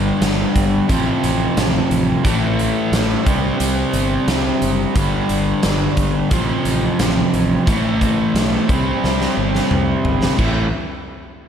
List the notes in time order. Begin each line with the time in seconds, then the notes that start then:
Already playing: G1 G2 D3 G3
0.21 G1, snare, closed hi-hat
0.56 G1, kick, closed hi-hat
0.88 A1 F2 C3 F3, kick, closed hi-hat
1.24 A1, closed hi-hat
1.57 A1, snare, closed hi-hat
1.90 A1, closed hi-hat
2.24 A1 A2 E3 A3, kick, closed hi-hat
2.59 closed hi-hat
2.92 A1, snare, closed hi-hat
3.25 C2 C3 G3 C4, kick, closed hi-hat
3.60 C2, closed hi-hat
3.93 G1, closed hi-hat
4.27 C2, snare, closed hi-hat
4.62 F#1, closed hi-hat
4.95 G1 G2 D3 G3, kick, closed hi-hat
5.29 G1, closed hi-hat
5.63 G1, snare, closed hi-hat
5.97 G1, kick, closed hi-hat
6.30 A1 F2 C3 F3, kick, closed hi-hat
6.65 A1, closed hi-hat
6.99 A1, snare, closed hi-hat
7.33 A1, closed hi-hat
7.66 A1 A2 E3 A3, kick, closed hi-hat
8.01 kick, closed hi-hat
8.34 B1, snare, closed hi-hat
8.67 C2 C3 G3 C4, kick, closed hi-hat
9.04 C2, snare
9.21 snare
9.37 G1
9.55 snare
9.71 C2, mid tom
10.05 G1, floor tom
10.23 snare
10.37 A1 A2 E3 A3, kick, crash